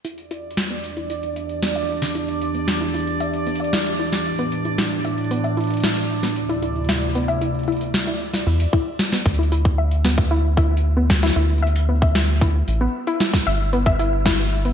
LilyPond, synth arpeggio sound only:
\new Staff \with { instrumentName = "Synth arpeggio sound" } { \time 4/4 \key e \minor \tempo 4 = 114 e'16 r16 e'16 r8 b16 r16 e'16 e'16 r16 e''16 r16 b16 e''16 e'16 r16 | e'16 r8 b16 r16 e'16 e'16 r16 e''16 r16 b16 e''16 e'16 r16 e'16 r16 | r16 b16 r16 e'16 e'16 r16 e''16 r16 b16 e''16 e'16 r16 e'16 r8 b16 | r16 e'16 e'16 r16 e''16 r16 b16 e''16 e'16 r16 e'16 r8 e'16 r16 e'16 |
e'16 r16 e'16 r8 b16 r16 e'16 e'16 r16 e''16 r16 b16 e''16 e'16 r16 | e'16 r8 b16 r16 e'16 e'16 r16 e''16 r16 b16 e''16 e'16 r16 e'16 r16 | r16 b16 r16 e'16 e'16 r16 e''16 r16 b16 e''16 e'16 r16 e'16 r8 b16 | }